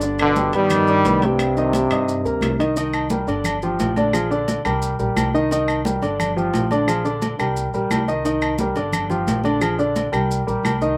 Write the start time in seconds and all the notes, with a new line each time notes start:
Already playing: G1
0.01 D3 D4 D5, high conga, maracas
0.19 B2 D3, high conga, high timbale, claves, maracas
0.36 G3 G4 G5, high conga, low timbale, maracas
0.53 G2 D#3 G3 B3 B4 B5, high timbale, maracas
0.70 high conga, low conga, high timbale, claves, maracas
0.87 D4 D5 D6, high conga, maracas
1.05 C2 B3 B4 B5, high conga, high timbale, low timbale, maracas
1.22 G2 C3 G3 G4 G5, high conga, high timbale, maracas
1.39 high timbale, claves, maracas
1.56 D#3 D#4 D#5, high conga, maracas
1.73 G3 G4 G5, high conga, high timbale, low timbale, maracas
1.90 G2 D#4 D#5 D#6, high conga, high timbale, claves, maracas
2.08 high conga, maracas
2.24 D2 A#3 A#4 A#5, high conga, maracas
2.41 C2, high conga, high timbale, low timbale, claves, maracas
2.58 D#3 D#4 D#5, high conga, high timbale, maracas
2.76 D#3 D#4 D#5, high conga, low agogo, maracas
2.93 high conga, low agogo, claves, maracas
3.10 G3 G4 A#4, high conga, low timbale, maracas
3.27 G1 D3 D4 D5, high conga, low agogo, maracas
3.44 high conga, low conga, low agogo, claves, maracas
3.62 F3 F4 G4, high conga, maracas
3.79 A#1, high conga, low timbale, low agogo, maracas
3.96 D3 D4 D5, high conga, low agogo, maracas
4.13 F3 F4 G#4, high conga, low agogo, claves, maracas
4.30 D3 D4 D5, high conga, maracas
4.48 high conga, low timbale, low agogo, maracas
4.65 C2 G3 G4 A#4, high conga, low agogo, claves, maracas
4.82 high conga, maracas
4.99 A#1 G3 G4 A#4, high conga, maracas
5.16 C2, high conga, low timbale, low agogo, claves, maracas
5.34 D#3 D#4 D#5, high conga, maracas
5.51 D#3 D#4 D#5, high conga, low agogo, maracas
5.68 high conga, low agogo, claves, maracas
5.85 G3 G4 A#4, high conga, low timbale, maracas
6.02 G1 D3 D4 D5, high conga, low agogo, maracas
6.20 high conga, low conga, low agogo, claves, maracas
6.37 F3 F4 G4, high conga, maracas
6.53 A#1, high conga, low timbale, low agogo, maracas
6.71 D3 D4 D5, high conga, low agogo, maracas
6.87 F3 F4 G#4, high conga, low agogo, claves, maracas
7.04 D3 D4 D5, high conga, maracas
7.22 high conga, low timbale, low agogo, maracas
7.39 C2 G3 G4 A#4, high conga, low agogo, claves, maracas
7.57 high conga, maracas
7.73 A#1 G3 G4 A#4, high conga, maracas
7.90 C2, high conga, low timbale, low agogo, claves, maracas
8.08 D#3 D#4 D#5, high conga, maracas
8.25 D#3 D#4 D#5, high conga, low agogo, maracas
8.41 high conga, low agogo, claves, maracas
8.58 G3 G4 A#4, high conga, low timbale, maracas
8.75 G1 D3 D4 D5, high conga, low agogo, maracas
8.93 high conga, low conga, low agogo, claves, maracas
9.10 F3 F4 G4, high conga, low conga, maracas
9.26 A#1, high conga, low timbale, low agogo, maracas
9.44 D3 D4 D5, high conga, low agogo, maracas
9.61 F3 F4 G#4, high conga, low agogo, claves, maracas
9.78 D3 D4 D5, high conga, maracas
9.96 high conga, low timbale, low agogo, maracas
10.12 C2 G3 G4 A#4, high conga, low agogo, claves, maracas
10.31 high conga, maracas
10.47 A#1 G3 G4 A#4, high conga, maracas
10.63 C2, high conga, low timbale, low agogo, claves, maracas
10.81 D#3 D#4 D#5, high conga, maracas